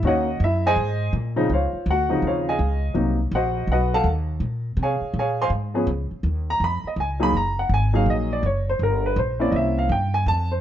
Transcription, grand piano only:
0.04 0.26 D#3 medium
0.04 0.26 A#3 medium
0.04 0.26 C#4 medium
0.04 0.26 F#4 medium
0.04 0.40 C#5 medium
0.04 0.40 D#5 medium
0.04 0.40 F#5 medium
0.44 0.66 E4 medium
0.44 0.65 E5 medium
0.66 1.11 G#4 medium
0.66 1.11 C5 medium
0.66 1.11 D#5 medium
0.66 1.11 G#5 loud
1.36 1.48 C#3 medium
1.36 1.48 F3 medium
1.36 1.48 C4 medium
1.36 1.48 D#4 medium
1.53 1.85 F4 medium
1.53 1.86 C5 medium
1.53 1.86 C#5 medium
1.53 1.85 F5 medium
1.91 2.22 F#4 medium
1.91 2.22 F#5 loud
2.09 2.56 C#3 medium
2.09 2.56 F3 medium
2.09 2.56 C4 medium
2.09 2.56 D#4 medium
2.27 2.48 F4 medium
2.27 2.48 C5 medium
2.27 2.48 C#5 medium
2.27 2.48 F5 medium
2.49 2.93 G#4 medium
2.49 2.93 D#5 medium
2.49 2.93 F5 medium
2.49 2.93 G#5 medium
2.94 3.16 C3 medium
2.94 3.16 F#3 medium
2.94 3.17 A#3 medium
2.94 3.17 D#4 medium
3.35 3.68 F#4 medium
3.35 3.68 C5 medium
3.35 3.68 D#5 medium
3.35 3.67 F#5 medium
3.72 3.94 F#4 medium
3.72 3.94 B4 medium
3.72 3.93 D#5 medium
3.72 3.93 F#5 medium
3.94 4.06 A4 medium
3.94 4.05 F5 medium
3.94 4.05 F#5 medium
3.94 4.05 A5 loud
4.83 5.15 G#4 medium
4.83 5.14 C#5 medium
4.83 5.15 F5 medium
4.83 5.14 G#5 medium
5.19 5.40 G#4 medium
5.19 5.40 C#5 medium
5.19 5.40 F5 medium
5.19 5.40 G#5 medium
5.42 5.48 C5 medium
5.42 5.48 F5 medium
5.42 5.48 G#5 medium
5.42 5.48 C6 loud
5.74 5.86 F3 medium
5.74 5.86 B3 medium
5.74 5.86 C#4 medium
5.74 5.86 G#4 medium
6.50 6.61 A#5 loud
6.64 6.85 B5 loud
6.87 6.98 D#5 medium
7.00 7.22 G#5 medium
7.20 7.31 F#3 medium
7.20 7.32 A#3 medium
7.20 7.32 D#4 medium
7.20 7.32 G#4 medium
7.20 7.34 B5 loud
7.37 7.58 A#5 medium
7.59 7.70 F#5 medium
7.74 7.95 G#5 loud
7.93 8.40 F#3 medium
7.93 8.40 A#3 medium
7.93 8.41 D#4 medium
7.93 8.40 G#4 medium
7.93 8.07 F5 loud
8.10 8.31 D#5 medium
8.33 8.44 D5 medium
8.46 8.68 C#5 medium
8.69 8.81 C5 medium
8.83 9.05 A#4 medium
9.06 9.17 B4 medium
9.18 9.41 C5 medium
9.40 9.87 A#3 medium
9.40 9.87 C4 medium
9.40 9.87 C#4 medium
9.40 9.87 E4 medium
9.40 9.53 D5 medium
9.51 9.54 D#5 medium
9.56 9.78 E5 medium
9.78 9.90 F5 medium
9.92 10.14 G5 medium
10.14 10.26 G#5 loud
10.28 10.51 A5 loud
10.52 10.61 C5 medium

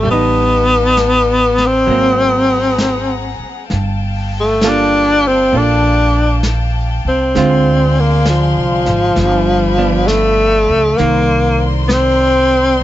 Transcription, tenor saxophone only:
0.11 1.68 B3 medium
1.67 3.44 C4 medium
4.40 4.70 A3 medium
4.69 5.29 D4 loud
5.27 5.59 C4 medium
5.58 6.46 D4 medium
7.09 8.02 C4 medium
8.00 8.28 A#3 medium
8.30 10.09 F3 medium
10.08 10.99 A3 medium
10.98 11.72 A#3 medium
11.88 11.94 B3 medium
11.92 12.83 C4 loud

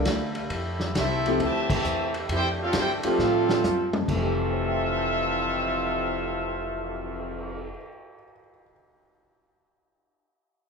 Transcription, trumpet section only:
0.00 0.33 A#3 medium
0.00 0.33 G4 medium
0.00 0.33 D5 medium
0.96 1.38 C4 medium
0.96 1.38 G4 medium
0.96 1.37 A4 medium
0.96 1.38 E5 loud
1.43 1.72 G4 loud
1.43 1.71 C5 loud
1.43 1.71 E5 loud
1.43 1.71 A5 loud
1.74 2.13 G4 medium
1.74 2.13 C5 medium
1.74 2.13 E5 medium
1.74 2.13 A5 medium
2.34 2.46 E4 medium
2.34 2.46 A4 medium
2.34 2.47 C5 loud
2.34 2.46 G5 loud
2.61 2.74 C4 medium
2.61 2.75 G4 medium
2.61 2.75 A4 medium
2.61 2.75 F5 loud
2.77 2.90 E4 medium
2.77 2.90 A4 medium
2.77 2.90 C5 loud
2.77 2.90 G5 loud
3.06 3.91 C4 medium
3.06 3.90 G4 medium
3.06 3.90 A4 medium
3.06 3.90 F5 loud
4.09 7.72 C4 medium
4.09 7.72 A4 medium
4.09 7.71 E5 loud
4.09 7.71 F5 medium

